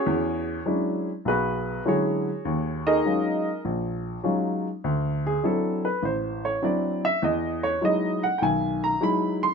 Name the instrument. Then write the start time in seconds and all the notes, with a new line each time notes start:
grand piano
Already playing: C#4 F#4 G#4 C#5
0.06 E2
0.66 F#3 G#3 C#4 D4 E4
1.25 B1 B3 F#4 G#4 B4
1.86 D3 F#3 G#3 C#4 E4 F#4 G#4 C#5
2.45 D#2
2.87 D#4 G#4 A#4 D#5
3.05 F#3 G#3 C#4 D#4 F4
3.65 A#1
4.24 F#3 G#3 C#4 D#4 F4
4.84 D2
5.27 G#4
5.43 F#3 C4 D4 E4 A4
5.85 B4
6.03 A1 C5
6.45 C#5
6.62 F#3 C4 D4 E4 D5
7.05 E5
7.22 E2 D#5
7.63 C#5
7.81 F#3 G#3 D#4 E4 D#5
8.23 F#5
8.38 B1 D#3 G5
8.43 G#5
8.84 A#5
9.01 F#3 G#3 D#4 E4 B5
9.43 C6